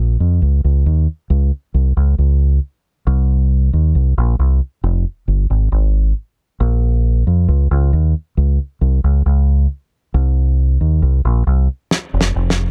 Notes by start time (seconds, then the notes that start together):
Already playing: A#1
0.20 F2
0.42 C#2
0.64 C#2
0.86 D#2
1.30 C#2
1.74 C2
1.97 C#2
2.18 C#2
3.07 C2
3.73 D#2
3.95 C2
4.18 A#1
4.39 C2
4.84 F1
5.28 G1
5.50 G#1
5.72 G#1
6.60 A#1
7.27 F2
7.48 C#2
7.71 C#2
7.93 D#2
8.37 C#2
8.81 C2
9.04 C#2
9.26 C#2
10.14 C2
10.81 D#2
11.02 C2
11.25 A#1
11.47 C2
11.91 snare
12.14 F1
12.21 snare
12.35 F1
12.50 snare